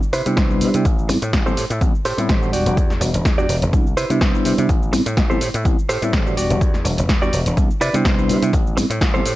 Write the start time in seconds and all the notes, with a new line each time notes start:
0.03 shaker
0.13 C3 E4 B4 C5, open hi-hat, shaker
0.26 C3 G3 B3 D4 E4, closed hi-hat, shaker
0.37 C2 E4 B4 C5, kick, snare, closed hi-hat, shaker
0.50 G3 B3 D4 E4, shaker
0.61 C3, open hi-hat, shaker
0.74 C3 G3 B3 D4 E4, closed hi-hat, shaker
0.85 A1, kick, closed hi-hat, shaker
0.99 shaker
1.09 A2 G3 B3 C4 E4, muted clean electric guitar stroke, open hi-hat, shaker
1.22 A2, muted clean electric guitar stroke, closed hi-hat, shaker
1.33 A1, kick, snare, closed hi-hat, shaker
1.46 G3 B3 C4 E4 G4 A4 C5, shaker
1.57 A2, open hi-hat, shaker
1.70 A2, closed hi-hat, shaker
1.81 A1 G3 B3 C4 E4, muted clean electric guitar stroke, kick, closed hi-hat, shaker
1.95 shaker
2.05 A2 G4 A4 C5, open hi-hat, shaker
2.17 A2 G3 B3 C4 E4, closed hi-hat, shaker
2.29 A1 G4 A4 C5, kick, snare, closed hi-hat, shaker
2.42 G3 B3 D4 F#4, shaker
2.53 E1 F#4 G4 D5, open hi-hat, shaker
2.66 E1 G3 B3 D4 F#4, closed hi-hat, shaker
2.77 E2, kick, closed hi-hat, shaker
2.90 snare, shaker
3.01 E1 G3 B3 D4 F#4, muted clean electric guitar stroke, open hi-hat, shaker
3.14 E1, muted clean electric guitar stroke, closed hi-hat, shaker
3.25 E2, kick, snare, closed hi-hat, shaker
3.37 G3 B3 D4 F#4 G4 D5, shaker
3.49 E1, open hi-hat, shaker
3.62 E1, closed hi-hat, shaker
3.72 C2 G3 B3 D4 E4, muted clean electric guitar stroke, kick, closed hi-hat, shaker
3.87 shaker
3.97 C3 E4 B4 C5, open hi-hat, shaker
4.10 C3 G3 B3 D4 E4, closed hi-hat, shaker
4.21 C2 E4 B4 C5, kick, snare, closed hi-hat, shaker
4.34 G3 B3 D4 E4, shaker
4.45 C3, open hi-hat, shaker
4.57 C3 G3 B3 D4 E4, closed hi-hat, shaker
4.69 A1, kick, closed hi-hat, shaker
4.83 shaker
4.92 A2 G3 B3 C4 E4, muted clean electric guitar stroke, open hi-hat, shaker
5.06 A2, muted clean electric guitar stroke, closed hi-hat, shaker
5.17 A1, kick, snare, closed hi-hat, shaker
5.30 G3 B3 C4 E4 G4 A4 C5, shaker
5.41 A2, open hi-hat, shaker
5.54 A2, closed hi-hat, shaker
5.65 A1 G3 B3 C4 E4, muted clean electric guitar stroke, kick, closed hi-hat, shaker
5.79 shaker
5.89 A2 G4 A4 C5, open hi-hat, shaker
6.02 A2 G3 B3 C4 E4, closed hi-hat, shaker
6.13 A1 G4 A4 C5, kick, snare, closed hi-hat, shaker
6.26 G3 B3 D4 F#4, shaker
6.37 E1 F#4 G4 D5, open hi-hat, shaker
6.50 E1 G3 B3 D4 F#4, closed hi-hat, shaker
6.61 E2, kick, closed hi-hat, shaker
6.74 snare, shaker
6.85 E1 G3 B3 D4 F#4, muted clean electric guitar stroke, open hi-hat, shaker
6.97 E1, muted clean electric guitar stroke, closed hi-hat, shaker
7.09 E2, kick, snare, closed hi-hat, shaker
7.22 G3 B3 D4 F#4 G4 D5, shaker
7.33 E1, open hi-hat, shaker
7.46 E1, closed hi-hat, shaker
7.57 C2 G3 B3 D4 E4, muted clean electric guitar stroke, kick, closed hi-hat, shaker
7.71 shaker
7.81 C3 E4 B4 D5, open hi-hat, shaker
7.93 C3 G3 B3 D4 E4, closed hi-hat, shaker
8.05 C2 E4 B4 C5, kick, snare, closed hi-hat, shaker
8.17 G3 B3 D4 E4, shaker
8.29 C3, open hi-hat, shaker
8.41 C3 G3 B3 D4 E4, closed hi-hat, shaker
8.53 A1, kick, closed hi-hat, shaker
8.67 shaker
8.77 A2 G3 B3 C4 E4, muted clean electric guitar stroke, open hi-hat, shaker
8.90 A2, muted clean electric guitar stroke, closed hi-hat, shaker
9.01 A1, kick, snare, closed hi-hat, shaker
9.14 G3 B3 C4 E4 G4 A4 C5, shaker
9.25 A2, open hi-hat, shaker